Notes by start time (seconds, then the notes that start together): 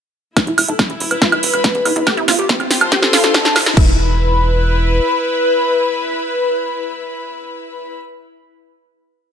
0.37 E4 B4, kick, snare, closed hi-hat, riser, high woodblock
0.47 E1 E4, closed hi-hat
0.58 E1 E4, open hi-hat, high woodblock
0.68 E1 E4 A4, closed hi-hat
0.79 E4, kick, snare, closed hi-hat, high woodblock
0.90 E1 E4, closed hi-hat
1.00 E1 E4 B4, open hi-hat
1.11 E1 B4 B5, closed hi-hat, high woodblock
1.22 F4, kick, snare, closed hi-hat
1.32 F1 E4, closed hi-hat, high woodblock
1.43 E1, open hi-hat
1.54 E1, closed hi-hat, high woodblock
1.64 B4, kick, snare, closed hi-hat
1.75 E2, closed hi-hat
1.85 E2 E4, open hi-hat, high woodblock
1.96 E2 E4, closed hi-hat
2.07 F4 G4 A4, kick, snare, closed hi-hat, high woodblock
2.17 F1 C4 E4, closed hi-hat
2.28 G1 C4 F4, snare, open hi-hat, high woodblock
2.36 G1 G4 C5, closed hi-hat
2.49 C4 C5, kick, snare, closed hi-hat
2.60 F1 C4, closed hi-hat, high woodblock
2.71 F1 C4, snare, open hi-hat
2.77 C6
2.81 F1 A4, closed hi-hat, high woodblock
2.92 G4, kick, snare, closed hi-hat
3.02 G1, snare, closed hi-hat, high woodblock
3.13 G1 F4, snare, open hi-hat
3.24 G1 F4, snare, closed hi-hat
3.34 G4, kick, snare, closed hi-hat, high woodblock
3.45 G1, snare, closed hi-hat
3.56 G1 F5, snare, open hi-hat, high woodblock
3.66 G1 F4, snare, closed hi-hat
3.77 E1 E4 B4, kick, crash
3.83 B4
3.90 B5